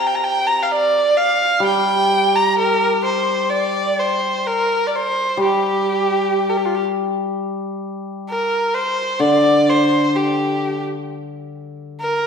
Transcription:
Already playing: hammered dulcimer C3
0.06 erhu G5
0.15 erhu A#5
0.24 erhu G5
0.47 erhu A#5
0.62 erhu F5
0.72 erhu D5
1.17 erhu F5
1.60 hammered dulcimer G3
1.65 erhu G5
2.36 erhu A#5
2.58 erhu A#4
3.04 erhu C5
3.50 erhu D5
3.99 erhu C5
4.47 erhu A#4
4.87 erhu D5
4.96 erhu C5
5.37 hammered dulcimer G3
5.42 erhu G4
6.50 erhu A#4
6.57 erhu G4
6.65 erhu F4
6.75 erhu G4
8.29 erhu A#4
8.74 erhu C5
9.19 hammered dulcimer D3, erhu D5
9.70 erhu C5
10.16 erhu G4
12.00 erhu A#4

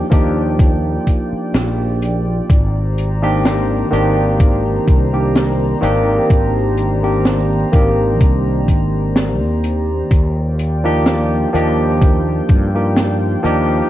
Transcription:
Already playing: ambient pad F4 D5 G5
0.10 fretless electric bass D#2, tine electric piano F3 A#3 D4 D#4 G4, kick, closed hi-hat
0.59 kick, closed hi-hat
1.07 kick, closed hi-hat
1.32 muted fretless electric bass stroke
1.54 fretless electric bass A#1, snare, closed hi-hat
2.02 closed hi-hat
2.49 fretless electric bass G#1, ambient pad G4 C5 A#5, kick, closed hi-hat
2.98 closed hi-hat
3.22 tine electric piano D#3 A#3 C4 D4 G4
3.46 snare, closed hi-hat
3.91 fretless electric bass G#1, tine electric piano D#3 A#3 C4 D4 G4, closed hi-hat
4.40 kick, closed hi-hat
4.88 fretless electric bass C2, kick, closed hi-hat
5.13 tine electric piano D#3 A#3 C4 D4 G4
5.35 snare, closed hi-hat
5.81 fretless electric bass G#1, tine electric piano D#3 A#3 C4 D4 G4, closed hi-hat
6.30 fretless electric bass G#1, kick, closed hi-hat
6.78 closed hi-hat
7.02 tine electric piano D#3 A#3 C4 D4 G4
7.25 snare, closed hi-hat
7.72 fretless electric bass G#1, tine electric piano D#3 A#3 C4 D4 G4, kick, closed hi-hat
8.20 fretless electric bass C2, kick, closed hi-hat
8.68 fretless electric bass G#1, kick, closed hi-hat
9.16 snare, closed hi-hat
9.41 fretless electric bass D#2
9.64 closed hi-hat
10.11 fretless electric bass D#2, ambient pad F4 D5 G5, kick, closed hi-hat
10.59 closed hi-hat
10.84 tine electric piano F3 A#3 D4 D#4 G4
11.06 snare, closed hi-hat
11.53 fretless electric bass D#2, tine electric piano F3 A#3 D4 D#4 G4, closed hi-hat
12.02 kick, closed hi-hat
12.49 fretless electric bass G2, kick, closed hi-hat
12.74 tine electric piano F3 A#3 D4 D#4 G4
12.97 snare, closed hi-hat
13.43 fretless electric bass D#2, tine electric piano F3 A#3 D4 D#4 G4, closed hi-hat

